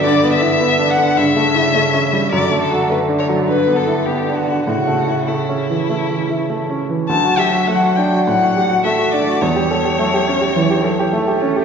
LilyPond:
<<
  \new Staff \with { instrumentName = "Violin" } { \time 4/4 \key d \major \tempo 4 = 104 d''8 e''4 fis''8 e''2 | d''8 a'8 b'8 cis''8 b'8 a'8 g'8 fis'8 | fis'4 e'2~ e'8 r8 | a''8 e''8 fis''8 g''8 fis''4 e''8 d''8 |
cis''2.~ cis''8 r8 | }
  \new Staff \with { instrumentName = "Grand piano" } { \time 4/4 \key d \major \tuplet 3/2 { g,8 b8 e'8 b8 d'8 d8 g,8 a8 e'8 a8 cis'8 g8 } | \tuplet 3/2 { fis,8 a8 fis'8 a8 d'8 fis8 g,8 b8 e'8 b8 d'8 d8 } | \tuplet 3/2 { a,8 a8 e'8 a8 cis'8 e8 a8 e8 e'8 a8 cis'8 e8 } | d,16 fis'16 g'16 fis'16 a16 fis'16 d'16 fis'16 a,16 fis'16 g'16 fis'16 a16 fis'16 d'16 fis'16 |
e,16 g'16 a'16 g'16 a16 g'16 cis'16 g'16 e16 g'16 a'16 g'16 a16 g'16 cis'16 g'16 | }
  \new Staff \with { instrumentName = "Cello" } { \clef bass \time 4/4 \key d \major d2 cis2 | d1 | cis2.~ cis8 r8 | fis2. a4 |
g4 fis4 e8 fis8 a4 | }
>>